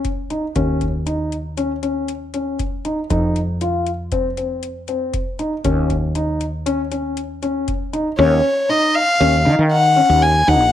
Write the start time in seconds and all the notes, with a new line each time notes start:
Already playing: C#2
0.05 kick, closed hi-hat
0.30 D#4, closed hi-hat
0.56 D#2 C#4, kick, closed hi-hat
0.81 kick, closed hi-hat
1.06 D#4, closed hi-hat
1.32 closed hi-hat
1.57 C#4, closed hi-hat
1.83 C#4, closed hi-hat
2.08 closed hi-hat
2.34 C#4, closed hi-hat
2.59 kick, closed hi-hat
2.85 D#4, closed hi-hat
3.10 F2 D#4, kick, closed hi-hat
3.36 closed hi-hat
3.61 F4, closed hi-hat
3.87 closed hi-hat
4.12 C4, kick, closed hi-hat
4.37 C4, closed hi-hat
4.63 closed hi-hat
4.88 C4, closed hi-hat
5.14 kick, closed hi-hat
5.39 D#4, closed hi-hat
5.65 D#2 C#4, kick, closed hi-hat
5.90 kick, closed hi-hat
6.15 D#4, closed hi-hat
6.41 closed hi-hat
6.66 C#4, closed hi-hat
6.92 C#4, closed hi-hat
7.17 closed hi-hat
7.42 C#4, closed hi-hat
7.68 kick, closed hi-hat
7.93 D#4, closed hi-hat
8.19 D#2 C#4 C#5
8.69 D#4 D#5
8.95 F5
9.20 D#2 C#4
9.45 D#3 D#4
9.59 D#3
9.72 F#5
9.96 C#4
10.10 D#2
10.23 G#5
10.47 D#2 D#4 F#5
10.60 A#1